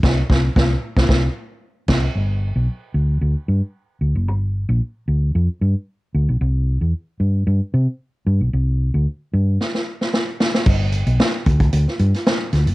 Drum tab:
CC |x-------------x-|----------------|----------------|----------------|
HH |----------------|----------------|----------------|----------------|
SD |o-o-o--oo-----o-|----------------|----------------|----------------|
BD |o-o-o--oo-----o-|----------------|----------------|----------------|

CC |----------------|x---------------|
HH |----------------|--xx--xxx-xx--xx|
SD |--------oo-oo-oo|----o----o-oo-o-|
BD |----------------|o-----oo--------|